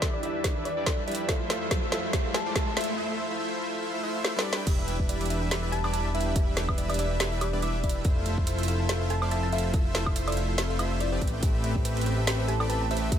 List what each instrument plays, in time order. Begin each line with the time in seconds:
Already playing: analog synth pad E2 E3 G4 D5, grand piano E3 E4 G4 D5, riser
0.02 supersaw synth G3 D4 E4 B4 E5, kick, snare, closed hi-hat
0.14 synth pluck D5
0.21 grand piano E3 E4 G4 D5, supersaw synth G3 D4 E4 B4 E5, synth pluck D5, closed hi-hat
0.44 supersaw synth G3 D4 E4 B4 E5, kick, snare, closed hi-hat
0.56 supersaw synth G3 D4 E4 B4 E5
0.65 synth pluck D5, closed hi-hat
0.77 supersaw synth G3 D4 E4 B4 D5
0.86 supersaw synth G3 D4 E4 B4 E5, synth pluck D5, kick, snare, closed hi-hat
1.08 supersaw synth G3 D4 E4 B4 E5, synth pluck D5, closed hi-hat
1.11 closed hi-hat
1.15 closed hi-hat
1.27 analog synth pad F2 F3 A4 E5, grand piano F3 F4 A4, supersaw synth A3 E4 F4 C5 E5, kick, snare, closed hi-hat
1.31 grand piano E5
1.50 snare, closed hi-hat
1.62 supersaw synth A3 E4 F4 C5 E5
1.71 supersaw synth A3 E4 F4 C5 E5, kick, snare, closed hi-hat
1.90 grand piano F3 F4 A4, supersaw synth A3 E4 F4 C5 E5, snare, closed hi-hat
1.94 grand piano E5
2.13 supersaw synth A3 E4 F4 C5 E5, kick, snare, closed hi-hat
2.25 supersaw synth A3 E4 F4 C5 E5
2.34 synth pluck A5, snare, closed hi-hat
2.46 supersaw synth A3 E4 F4 C5 D5
2.56 supersaw synth A3 E4 F4 C5 E5, synth pluck A5, kick, snare, closed hi-hat
2.67 synth pluck A5
2.77 supersaw synth A3 E4 F4 C5 E5, synth pluck E5, snare, closed hi-hat
2.81 closed hi-hat
2.84 closed hi-hat
2.98 supersaw synth A3 E4 F4 C5 E5
3.31 supersaw synth A3 E4 F4 C5 E5
3.40 supersaw synth A3 E4 F4 C5 E5
3.61 supersaw synth A3 E4 F4 C5 E5
3.82 supersaw synth A3 E4 F4 C5 E5
3.94 supersaw synth A3 E4 F4 C5 E5
4.03 supersaw synth A3 E4 F4 C5 E5
4.25 snare
4.36 supersaw synth G3 D4 E4 B4 D5, snare
4.53 snare
4.57 supersaw synth G3 D4 E4 B4 G5
4.67 analog synth bass E1, analog synth pad E3 B3 D4 G4, supersaw synth G3 D4 E4 B4 E5, synth arpeggio sound G4, kick, closed hi-hat, crash
4.79 synth arpeggio sound E5
4.88 synth arpeggio sound G5, closed hi-hat
4.99 supersaw synth G3 D4 E4 B4 E5, synth arpeggio sound B4, kick
5.09 supersaw synth G3 D4 E4 B4 E5, synth arpeggio sound D5, closed hi-hat
5.21 synth arpeggio sound D6, closed hi-hat
5.26 closed hi-hat
5.30 supersaw synth G3 D4 E4 B4 E5, synth arpeggio sound E5, closed hi-hat
5.42 synth arpeggio sound G5
5.51 supersaw synth G3 D4 E4 B4 E5, synth arpeggio sound G4, snare, closed hi-hat
5.63 supersaw synth G3 D4 E4 B4 E5, synth arpeggio sound E5
5.72 synth arpeggio sound G4, synth pluck A5, closed hi-hat
5.84 supersaw synth G3 D4 E4 B4 D5, synth arpeggio sound B4, high woodblock
5.93 supersaw synth G3 D4 E4 B4 E5, synth arpeggio sound D5, synth pluck A5, closed hi-hat
6.05 synth pluck A5, synth arpeggio sound D6
6.14 supersaw synth G3 D4 E4 B4 E5, synth arpeggio sound E5, synth pluck E5, closed hi-hat
6.21 closed hi-hat
6.26 synth arpeggio sound G5
6.36 supersaw synth G3 D4 E4 B4 E5, synth arpeggio sound G4, kick, closed hi-hat
6.47 synth arpeggio sound E5
6.57 synth arpeggio sound G5, snare, closed hi-hat
6.68 supersaw synth G3 D4 E4 B4 E5, synth arpeggio sound B4, kick, high woodblock
6.78 supersaw synth G3 D4 E4 B4 E5, synth arpeggio sound D5, closed hi-hat
6.90 synth pluck D5, synth arpeggio sound D6, closed hi-hat, high woodblock
6.94 closed hi-hat
6.99 supersaw synth G3 D4 E4 B4 E5, synth pluck D5, synth arpeggio sound E5, closed hi-hat
7.11 synth arpeggio sound G5
7.20 supersaw synth G3 D4 E4 B4 E5, synth arpeggio sound G4, snare, closed hi-hat
7.32 supersaw synth G3 D4 E4 B4 E5, synth arpeggio sound E5
7.41 synth arpeggio sound G4, synth pluck D5, closed hi-hat, high woodblock
7.53 supersaw synth G3 D4 E4 B4 D5, synth arpeggio sound B4
7.62 supersaw synth G3 D4 E4 B4 E5, synth pluck D5, synth arpeggio sound D5, closed hi-hat
7.74 synth arpeggio sound D6
7.84 supersaw synth G3 D4 E4 B4 E5, synth pluck D5, synth arpeggio sound E5, kick, closed hi-hat
7.89 closed hi-hat
7.95 synth arpeggio sound G5
8.05 analog synth bass F1, analog synth pad F3 C4 E4 A4, supersaw synth A3 E4 F4 C5 E5, synth arpeggio sound A4, kick, closed hi-hat
8.16 synth arpeggio sound F5
8.26 synth arpeggio sound A5, closed hi-hat
8.38 supersaw synth A3 E4 F4 C5 E5, synth arpeggio sound C5, kick
8.47 supersaw synth A3 E4 F4 C5 E5, synth arpeggio sound E5, closed hi-hat
8.59 synth arpeggio sound E6, closed hi-hat
8.63 closed hi-hat
8.68 supersaw synth A3 E4 F4 C5 E5, synth arpeggio sound F5, closed hi-hat
8.80 synth arpeggio sound A5
8.89 supersaw synth A3 E4 F4 C5 E5, synth arpeggio sound A4, snare, closed hi-hat
9.01 supersaw synth A3 E4 F4 C5 E5, synth arpeggio sound F5
9.10 synth arpeggio sound A4, synth pluck A5, closed hi-hat
9.22 supersaw synth A3 E4 F4 C5 D5, synth arpeggio sound C5, high woodblock
9.31 supersaw synth A3 E4 F4 C5 E5, synth arpeggio sound E5, synth pluck A5, closed hi-hat
9.43 synth pluck A5, synth arpeggio sound E6
9.52 supersaw synth A3 E4 F4 C5 E5, synth pluck E5, synth arpeggio sound F5, closed hi-hat
9.58 closed hi-hat
9.64 synth arpeggio sound A5
9.74 supersaw synth A3 E4 F4 C5 E5, synth arpeggio sound A4, kick, closed hi-hat
9.85 synth arpeggio sound F5
9.95 synth arpeggio sound A5, snare, closed hi-hat
10.06 supersaw synth A3 E4 F4 C5 E5, synth arpeggio sound C5, kick, high woodblock
10.16 supersaw synth A3 E4 F4 C5 E5, synth arpeggio sound E5, closed hi-hat
10.28 synth pluck D5, synth arpeggio sound E6, closed hi-hat, high woodblock
10.32 closed hi-hat
10.37 supersaw synth A3 E4 F4 C5 E5, synth arpeggio sound F5, closed hi-hat
10.49 synth arpeggio sound A5
10.58 supersaw synth A3 E4 F4 C5 E5, synth arpeggio sound A4, snare, closed hi-hat
10.70 supersaw synth A3 E4 F4 C5 E5, synth arpeggio sound F5
10.79 supersaw synth A3 E4 F4 C5 E5, synth arpeggio sound F5, closed hi-hat, high woodblock
10.91 synth arpeggio sound E6
11.00 synth arpeggio sound A4, synth pluck D5, closed hi-hat
11.12 supersaw synth A3 C4 G4 B4 D5, synth arpeggio sound C5
11.22 analog synth bass A1, analog synth pad A3 G4, synth arpeggio sound A5, kick, closed hi-hat
11.27 closed hi-hat
11.33 supersaw synth A3 C4 G4 B4 G5, synth arpeggio sound E5
11.43 supersaw synth A3 C4 G4 B4 E5, synth arpeggio sound G4, kick, closed hi-hat
11.54 synth arpeggio sound E5
11.64 synth arpeggio sound E5, closed hi-hat
11.76 supersaw synth A3 C4 G4 B4 E5, synth arpeggio sound A4, kick
11.85 supersaw synth A3 C4 G4 B4 E5, synth arpeggio sound B4, closed hi-hat
11.97 synth arpeggio sound A5, closed hi-hat
12.01 closed hi-hat
12.06 supersaw synth A3 C4 G4 B4 E5, synth arpeggio sound C5, closed hi-hat
12.18 synth arpeggio sound E5
12.27 supersaw synth A3 C4 G4 B4 E5, synth arpeggio sound G4, snare, closed hi-hat
12.39 supersaw synth A3 C4 G4 B4 E5, synth arpeggio sound C5
12.48 synth arpeggio sound G4, synth pluck A5, closed hi-hat
12.60 supersaw synth A3 C4 G4 B4 D5, synth arpeggio sound A4, high woodblock
12.69 supersaw synth A3 C4 G4 B4 E5, synth arpeggio sound B4, synth pluck A5, closed hi-hat
12.81 synth arpeggio sound A5, synth pluck A5
12.91 supersaw synth A3 C4 G4 B4 E5, analog synth pad A4, synth arpeggio sound C5, synth pluck E5, closed hi-hat
12.97 closed hi-hat
13.02 synth arpeggio sound E5
13.12 supersaw synth A3 C4 G4 B4 E5, synth arpeggio sound G4, kick, closed hi-hat